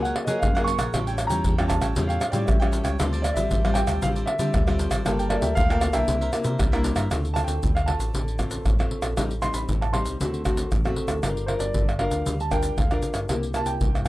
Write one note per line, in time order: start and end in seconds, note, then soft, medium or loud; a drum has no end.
0.00 0.13 C#2 medium
0.00 0.40 F#3 medium
0.00 0.26 A#3 medium
0.00 0.26 F4 soft
0.00 0.26 G#4 medium
0.00 0.08 F#5 medium
0.05 0.15 A#4 soft
0.05 0.15 C#5 medium
0.05 0.15 F#5 medium
0.05 pandeiro soft
0.05 shaker soft
0.16 muted cavaquinho stroke soft
0.16 pandeiro medium
0.16 tamborim medium
0.24 0.39 F#3 medium
0.24 0.50 A#3 medium
0.24 0.50 F4 medium
0.24 0.50 G#4 medium
0.24 0.53 C#5 medium
0.24 0.40 D#5 medium
0.24 0.53 F#5 medium
0.24 pandeiro medium
0.24 shaker medium
0.29 0.54 A#4 medium
0.39 0.75 F#2 loud
0.39 0.92 C#3 medium
0.39 0.67 F5 medium
0.39 pandeiro medium
0.39 tamborim medium
0.39 shaker medium
0.39 surdo loud
0.55 0.90 A#3 medium
0.55 0.91 F4 medium
0.55 0.91 G#4 medium
0.55 0.66 A#4 medium
0.55 0.66 C#5 medium
0.55 0.67 F#5 medium
0.55 pandeiro soft
0.55 tamborim medium
0.55 shaker soft
0.64 0.79 F4 soft
0.64 0.79 A#4 soft
0.64 0.78 C#5 medium
0.64 0.78 F#5 medium
0.64 1.32 C#6 loud
0.64 pandeiro medium
0.64 shaker medium
0.78 0.90 A#1 medium
0.78 0.92 A#4 soft
0.78 0.92 C#5 medium
0.78 0.92 F#5 medium
0.78 pandeiro medium
0.78 tamborim medium
0.78 shaker medium
0.93 1.26 A1 medium
0.93 1.43 A2 medium
0.93 1.29 G3 soft
0.93 1.29 C#4 medium
0.93 1.06 E4 medium
0.93 1.29 F4 medium
0.93 1.06 A4 soft
0.93 1.06 C#5 soft
0.93 1.06 G5 medium
0.93 pandeiro medium
0.93 tamborim medium
0.93 shaker medium
0.93 surdo medium
1.07 1.30 A4 medium
1.07 1.29 C#5 medium
1.07 1.28 G5 medium
1.07 pandeiro soft
1.07 shaker soft
1.18 pandeiro medium
1.18 tamborim medium
1.18 shaker medium
1.27 1.42 E2 medium
1.27 1.53 G3 medium
1.27 1.53 C#4 medium
1.27 1.43 C#5 medium
1.27 1.43 G5 medium
1.27 1.70 A#5 loud
1.27 pandeiro medium
1.27 shaker medium
1.31 1.53 F4 medium
1.31 1.44 A4 soft
1.44 1.78 E2 loud
1.44 1.57 E4 medium
1.44 1.57 A4 soft
1.44 1.58 C#5 medium
1.44 1.58 G5 medium
1.44 pandeiro medium
1.44 shaker medium
1.44 surdo medium
1.59 1.93 G3 medium
1.59 1.93 C#4 medium
1.59 1.93 F4 medium
1.59 1.69 A4 medium
1.59 1.70 C#5 medium
1.59 1.69 G5 medium
1.59 pandeiro soft
1.59 tamborim medium
1.59 shaker soft
1.68 2.09 A5 medium
1.68 muted cavaquinho stroke soft
1.68 pandeiro medium
1.68 tamborim medium
1.68 shaker medium
1.68 surdo medium
1.81 1.93 A1 medium
1.81 1.95 A4 medium
1.81 1.95 C#5 medium
1.81 1.94 G5 medium
1.81 pandeiro medium
1.81 tamborim medium
1.81 shaker medium
1.96 2.18 E2 medium
1.96 2.46 A2 medium
1.96 2.21 G3 medium
1.96 2.21 C#4 medium
1.96 2.08 E4 soft
1.96 2.21 F4 medium
1.96 2.08 A4 soft
1.96 2.09 C#5 soft
1.96 2.08 G5 medium
1.96 pandeiro medium
1.96 shaker medium
1.96 surdo medium
2.07 2.20 A4 medium
2.07 2.19 C#5 medium
2.07 2.35 F5 medium
2.07 2.20 G5 medium
2.07 pandeiro soft
2.07 shaker soft
2.20 muted cavaquinho stroke soft
2.20 pandeiro medium
2.20 tamborim medium
2.20 shaker medium
2.30 2.45 A2 medium
2.30 2.56 G3 medium
2.30 2.56 C#4 medium
2.30 2.56 F4 medium
2.30 2.59 A4 medium
2.30 2.59 C#5 medium
2.30 2.46 D5 medium
2.30 2.58 G5 medium
2.30 pandeiro medium
2.30 shaker medium
2.46 2.81 A1 medium
2.46 2.83 E5 medium
2.46 pandeiro medium
2.46 tamborim medium
2.46 shaker medium
2.46 surdo medium
2.60 2.96 G3 medium
2.60 2.96 C#4 medium
2.60 2.96 F4 medium
2.60 2.71 A4 medium
2.60 2.72 C#5 medium
2.60 2.72 G5 medium
2.60 pandeiro soft
2.60 tamborim medium
2.60 shaker soft
2.72 2.85 E4 soft
2.72 2.84 A4 medium
2.72 2.83 C#5 medium
2.72 2.82 G5 medium
2.72 pandeiro medium
2.72 shaker medium
2.84 2.96 C#2 medium
2.84 2.98 A4 medium
2.84 2.97 C#5 medium
2.84 2.97 G5 medium
2.84 pandeiro medium
2.84 tamborim medium
2.84 shaker medium
2.99 3.32 D2 medium
2.99 3.48 D3 medium
2.99 3.24 G3 medium
2.99 3.24 C4 soft
2.99 3.11 F4 medium
2.99 3.24 F4 medium
2.99 3.11 A4 medium
2.99 3.12 C5 medium
2.99 3.11 D5 medium
2.99 pandeiro medium
2.99 tamborim medium
2.99 shaker medium
2.99 surdo medium
3.13 3.36 A4 soft
3.13 3.35 C5 medium
3.13 3.34 D5 medium
3.13 pandeiro soft
3.13 shaker soft
3.22 3.37 D5 medium
3.22 pandeiro medium
3.22 tamborim medium
3.22 shaker medium
3.34 3.48 A1 medium
3.34 3.59 G3 medium
3.34 3.59 C4 medium
3.34 3.59 F4 medium
3.34 3.50 A4 medium
3.34 3.49 C5 medium
3.34 3.49 D5 medium
3.34 3.72 E5 medium
3.34 pandeiro medium
3.34 shaker medium
3.51 3.83 A1 loud
3.51 4.00 A2 medium
3.51 3.63 F4 medium
3.51 3.63 A4 soft
3.51 3.63 C5 medium
3.51 3.63 D5 medium
3.51 pandeiro medium
3.51 shaker medium
3.51 surdo medium
3.65 3.99 G3 medium
3.65 3.99 C4 medium
3.65 3.99 F4 medium
3.65 3.74 A4 medium
3.65 3.75 C5 medium
3.65 3.75 D5 medium
3.65 pandeiro soft
3.65 tamborim medium
3.65 shaker soft
3.74 3.99 G5 loud
3.74 muted cavaquinho stroke soft
3.74 pandeiro medium
3.74 tamborim medium
3.74 shaker medium
3.87 3.99 D2 medium
3.87 4.01 A4 medium
3.87 4.00 C5 medium
3.87 4.00 D5 medium
3.87 pandeiro medium
3.87 tamborim medium
3.87 shaker medium
4.02 4.24 A1 medium
4.02 4.52 D3 medium
4.02 4.27 G3 medium
4.02 4.27 C4 medium
4.02 4.14 F4 soft
4.02 4.27 F4 medium
4.02 4.14 A4 soft
4.02 4.14 C5 soft
4.02 4.14 D5 soft
4.02 4.08 F5 medium
4.02 pandeiro medium
4.02 shaker medium
4.02 surdo medium
4.15 4.27 A4 medium
4.15 4.27 C5 medium
4.15 4.27 D5 medium
4.15 pandeiro soft
4.15 shaker soft
4.26 4.75 E5 medium
4.26 muted cavaquinho stroke soft
4.26 pandeiro medium
4.26 tamborim medium
4.39 4.51 D3 medium
4.39 4.62 G3 medium
4.39 4.62 C4 medium
4.39 4.62 F4 medium
4.39 4.65 A4 medium
4.39 4.65 C5 medium
4.39 4.65 D5 medium
4.39 pandeiro medium
4.39 shaker medium
4.54 4.87 D2 medium
4.54 5.03 A2 soft
4.54 pandeiro medium
4.54 tamborim medium
4.54 shaker medium
4.54 surdo medium
4.67 5.01 G3 medium
4.67 5.01 C4 medium
4.67 5.02 F4 medium
4.67 4.78 A4 medium
4.67 4.79 C5 medium
4.67 4.79 D5 medium
4.67 pandeiro soft
4.67 tamborim medium
4.67 shaker soft
4.79 4.91 F4 medium
4.79 4.91 A4 medium
4.79 4.90 C5 medium
4.79 4.90 D5 medium
4.79 pandeiro medium
4.79 shaker medium
4.91 5.02 G#1 medium
4.91 5.04 A4 soft
4.91 5.04 C5 medium
4.91 5.04 D5 medium
4.91 pandeiro medium
4.91 tamborim medium
4.91 shaker medium
5.05 5.38 G1 medium
5.05 5.54 G3 medium
5.05 5.27 A#3 medium
5.05 5.17 F4 medium
5.05 5.27 F4 medium
5.05 5.27 A4 medium
5.05 5.17 A#4 medium
5.05 5.18 D5 soft
5.05 5.18 G5 medium
5.05 pandeiro medium
5.05 tamborim medium
5.05 shaker medium
5.05 surdo medium
5.19 5.43 A#4 medium
5.19 5.42 D5 medium
5.19 5.41 G5 medium
5.19 pandeiro soft
5.19 shaker soft
5.29 5.65 A#3 medium
5.29 5.65 F4 medium
5.29 5.65 A4 medium
5.29 5.42 D5 medium
5.29 pandeiro medium
5.29 tamborim medium
5.41 5.54 D2 medium
5.41 5.56 A#4 medium
5.41 5.55 D5 soft
5.41 5.56 E5 medium
5.41 5.55 G5 medium
5.41 pandeiro medium
5.41 shaker medium
5.55 5.90 D2 loud
5.55 6.05 D3 medium
5.55 5.69 F4 medium
5.55 5.69 A#4 medium
5.55 5.70 D5 medium
5.55 5.96 F5 loud
5.55 pandeiro medium
5.55 shaker medium
5.55 surdo loud
5.59 5.70 G5 medium
5.70 5.91 A#3 medium
5.70 5.91 F4 medium
5.70 5.91 A4 medium
5.70 5.81 A#4 medium
5.70 5.82 D5 medium
5.70 5.82 G5 medium
5.70 pandeiro soft
5.70 tamborim medium
5.70 shaker soft
5.81 muted cavaquinho stroke soft
5.81 pandeiro medium
5.81 tamborim medium
5.81 shaker medium
5.93 6.05 B1 medium
5.93 6.29 A#3 medium
5.93 6.29 D4 medium
5.93 6.29 E4 medium
5.93 6.07 A#4 medium
5.93 6.06 D5 medium
5.93 6.80 E5 loud
5.93 6.06 G5 medium
5.93 pandeiro medium
5.93 tamborim medium
5.93 shaker medium
6.08 6.30 C2 medium
6.08 6.57 C3 medium
6.08 6.20 E4 soft
6.08 6.20 A#4 soft
6.08 6.20 C5 soft
6.08 6.20 E5 medium
6.08 pandeiro medium
6.08 shaker medium
6.08 surdo medium
6.21 6.31 A#4 medium
6.21 6.32 C5 medium
6.21 6.32 E5 medium
6.21 pandeiro soft
6.21 shaker soft
6.33 6.68 A#3 medium
6.33 6.68 D4 medium
6.33 6.68 E4 medium
6.33 muted cavaquinho stroke soft
6.33 pandeiro medium
6.33 tamborim medium
6.33 shaker medium
6.44 6.56 C3 medium
6.44 6.71 A#4 medium
6.44 6.70 C5 medium
6.44 6.70 E5 medium
6.44 pandeiro medium
6.44 shaker medium
6.59 6.93 C2 loud
6.59 7.08 G3 medium
6.59 pandeiro medium
6.59 tamborim medium
6.59 shaker medium
6.59 surdo loud
6.72 7.07 A#3 medium
6.72 7.07 D4 medium
6.72 7.07 E4 medium
6.72 6.83 A#4 medium
6.72 6.84 C5 medium
6.72 6.84 E5 medium
6.72 pandeiro soft
6.72 tamborim medium
6.72 shaker soft
6.84 6.96 E4 soft
6.84 6.96 A#4 medium
6.84 6.95 C5 soft
6.84 6.94 E5 medium
6.84 pandeiro medium
6.84 shaker medium
6.96 7.08 G2 medium
6.96 7.09 A#4 medium
6.96 7.09 C5 medium
6.96 7.09 E5 medium
6.96 pandeiro medium
6.96 tamborim medium
6.96 shaker medium
7.11 7.44 D2 medium
7.11 7.60 D3 soft
7.11 7.26 A3 soft
7.11 7.26 C4 medium
7.11 7.27 F4 medium
7.11 pandeiro medium
7.11 tamborim medium
7.11 shaker medium
7.11 surdo medium
7.25 pandeiro soft
7.25 shaker soft
7.34 7.69 A3 medium
7.34 7.69 C4 medium
7.34 7.69 F4 medium
7.34 7.39 A5 loud
7.34 pandeiro medium
7.34 tamborim medium
7.34 shaker medium
7.44 7.59 D2 medium
7.44 7.71 G5 medium
7.44 pandeiro medium
7.44 shaker medium
7.62 7.95 D2 loud
7.62 8.11 A2 soft
7.62 pandeiro medium
7.62 shaker medium
7.62 surdo medium
7.75 7.88 F5 medium
7.75 pandeiro soft
7.75 tamborim medium
7.75 shaker soft
7.86 8.21 A3 medium
7.86 8.21 C4 soft
7.86 8.21 F4 medium
7.86 8.60 A5 medium
7.86 pandeiro medium
7.86 tamborim medium
7.99 8.11 A1 medium
7.99 pandeiro medium
7.99 shaker medium
8.14 8.58 A1 medium
8.14 8.63 D3 medium
8.14 pandeiro medium
8.14 shaker medium
8.14 surdo medium
8.28 pandeiro soft
8.28 shaker soft
8.39 8.74 A3 medium
8.39 8.74 C4 soft
8.39 8.74 F4 medium
8.39 pandeiro medium
8.39 tamborim medium
8.39 shaker medium
8.39 surdo medium
8.51 pandeiro medium
8.51 shaker medium
8.65 8.87 A1 medium
8.65 9.14 A2 medium
8.65 pandeiro medium
8.65 tamborim medium
8.65 shaker medium
8.65 surdo medium
8.79 9.13 A3 medium
8.79 9.13 C4 medium
8.79 9.13 F4 medium
8.79 pandeiro soft
8.79 tamborim medium
8.79 shaker soft
8.91 pandeiro soft
9.02 9.14 A#1 medium
9.02 pandeiro medium
9.02 tamborim medium
9.02 shaker medium
9.16 9.50 A1 medium
9.16 9.66 A2 soft
9.16 9.32 G3 medium
9.16 9.32 C4 medium
9.16 9.32 D#4 medium
9.16 pandeiro medium
9.16 tamborim medium
9.16 shaker medium
9.16 surdo medium
9.31 pandeiro soft
9.31 shaker soft
9.42 9.76 G3 soft
9.42 9.76 C4 medium
9.42 9.76 D#4 medium
9.42 9.56 C6 loud
9.42 pandeiro medium
9.42 tamborim medium
9.42 shaker medium
9.54 9.65 A1 medium
9.54 9.60 B5 medium
9.54 pandeiro medium
9.54 shaker medium
9.68 10.02 A1 loud
9.68 10.17 A2 soft
9.68 pandeiro medium
9.68 shaker medium
9.68 surdo loud
9.81 9.95 A5 medium
9.81 pandeiro soft
9.81 tamborim medium
9.81 shaker soft
9.93 10.18 G3 medium
9.93 10.18 C4 soft
9.93 10.18 D#4 soft
9.93 10.67 C6 medium
9.93 pandeiro medium
9.93 tamborim medium
10.05 10.17 C2 medium
10.05 pandeiro medium
10.05 shaker medium
10.20 10.64 D2 medium
10.20 10.69 D3 medium
10.20 10.42 A3 soft
10.20 10.42 C4 soft
10.20 10.42 F#4 medium
10.20 pandeiro medium
10.20 shaker medium
10.20 surdo medium
10.34 pandeiro soft
10.34 shaker soft
10.45 10.69 A3 soft
10.45 10.70 C4 soft
10.45 10.70 F#4 medium
10.45 pandeiro medium
10.45 tamborim medium
10.45 shaker medium
10.45 surdo medium
10.57 pandeiro medium
10.57 shaker medium
10.71 10.94 A1 loud
10.71 11.20 A2 soft
10.71 pandeiro medium
10.71 tamborim medium
10.71 shaker medium
10.71 surdo medium
10.85 11.19 A3 medium
10.85 11.19 C4 medium
10.85 11.20 F#4 medium
10.85 pandeiro soft
10.85 tamborim medium
10.85 shaker soft
10.96 pandeiro medium
11.08 11.20 D2 medium
11.08 pandeiro medium
11.08 tamborim medium
11.08 shaker medium
11.23 11.56 G1 medium
11.23 11.72 G3 medium
11.23 11.45 D4 medium
11.23 11.45 F4 soft
11.23 11.45 A#4 medium
11.23 pandeiro medium
11.23 tamborim medium
11.23 shaker medium
11.23 surdo medium
11.37 pandeiro soft
11.37 shaker soft
11.46 11.81 D4 medium
11.46 11.82 F4 medium
11.46 11.82 A#4 medium
11.46 11.51 C5 medium
11.46 pandeiro soft
11.46 tamborim medium
11.59 11.71 G1 medium
11.59 11.96 D5 medium
11.59 pandeiro medium
11.59 shaker medium
11.74 12.08 G1 medium
11.74 12.24 D3 medium
11.74 pandeiro medium
11.74 shaker medium
11.74 surdo medium
11.89 pandeiro soft
11.89 tamborim medium
11.89 shaker soft
11.99 12.34 D4 medium
11.99 12.34 F4 medium
11.99 12.34 A#4 medium
11.99 12.36 F5 medium
11.99 pandeiro medium
11.99 tamborim medium
12.11 12.23 D2 medium
12.11 pandeiro medium
12.11 shaker medium
12.26 12.70 D2 medium
12.26 12.75 G3 medium
12.26 pandeiro medium
12.26 shaker medium
12.26 surdo medium
12.40 12.52 A5 medium
12.40 pandeiro soft
12.40 shaker soft
12.51 12.76 D4 soft
12.51 12.76 F4 soft
12.51 12.76 A#4 medium
12.51 12.78 G5 medium
12.51 pandeiro medium
12.51 tamborim medium
12.51 shaker medium
12.51 surdo medium
12.63 pandeiro medium
12.63 shaker medium
12.77 12.99 D2 medium
12.77 13.27 D3 soft
12.77 13.14 F5 medium
12.77 pandeiro medium
12.77 tamborim medium
12.77 shaker medium
12.77 surdo loud
12.91 13.26 D4 medium
12.91 13.26 F4 medium
12.91 13.26 A#4 medium
12.91 pandeiro soft
12.91 tamborim medium
12.91 shaker soft
13.02 pandeiro medium
13.02 shaker medium
13.14 13.26 G2 medium
13.14 pandeiro medium
13.14 tamborim medium
13.14 shaker medium
13.29 13.62 C2 medium
13.29 13.78 C3 soft
13.29 13.45 A#3 medium
13.29 13.45 E4 soft
13.29 13.45 G4 medium
13.29 pandeiro medium
13.29 tamborim medium
13.29 shaker medium
13.29 surdo medium
13.43 pandeiro soft
13.43 shaker soft
13.54 14.02 A#3 soft
13.54 14.03 E4 medium
13.54 14.03 G4 medium
13.54 13.69 A5 medium
13.54 pandeiro medium
13.54 tamborim medium
13.54 shaker medium
13.65 13.78 C2 medium
13.65 14.04 G5 medium
13.65 pandeiro medium
13.65 shaker medium
13.80 14.08 C2 loud
13.80 14.08 G2 medium
13.80 pandeiro medium
13.80 shaker medium
13.80 surdo medium
13.95 pandeiro soft
13.95 tamborim medium
13.95 shaker soft